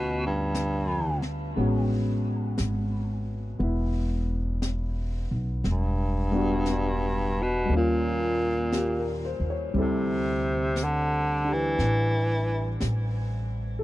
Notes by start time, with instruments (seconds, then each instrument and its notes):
Already playing: upright bass D2, baritone saxophone B2, grand piano A3 B3 C#4 F4
0.26 baritone saxophone G2
0.55 brush sweep, snare, hi-hat pedal
1.22 snare
1.56 upright bass A1, grand piano G#3 B3 C#4, brush sweep
1.60 grand piano F#4
2.58 upright bass G#1, brush sweep, snare, hi-hat pedal
3.59 upright bass E1, grand piano B3 E4, brush sweep
4.62 brush sweep, snare, hi-hat pedal
5.31 upright bass B1
5.64 upright bass E1, brush sweep, snare
5.70 baritone saxophone G2
6.31 grand piano G3 B3 D4
6.36 grand piano F#4
6.66 brush sweep, snare, hi-hat pedal
7.42 baritone saxophone B2
7.65 grand piano G3 A#3, brush sweep
7.69 upright bass D#2, grand piano C#4
7.76 baritone saxophone A#2, grand piano F4
8.72 grand piano G4, brush sweep, snare, hi-hat pedal
8.99 grand piano A#4
9.25 grand piano C5
9.40 upright bass D#2
9.50 grand piano C#5
9.74 upright bass D2, grand piano G3 C4 E4, brush sweep
9.78 baritone saxophone C3, grand piano A4
10.76 brush sweep, snare, hi-hat pedal
10.84 baritone saxophone D3
11.44 grand piano D4 G4
11.53 baritone saxophone E3
11.79 upright bass A1, brush sweep, snare
12.80 upright bass A1, brush sweep, snare, hi-hat pedal
13.79 grand piano A4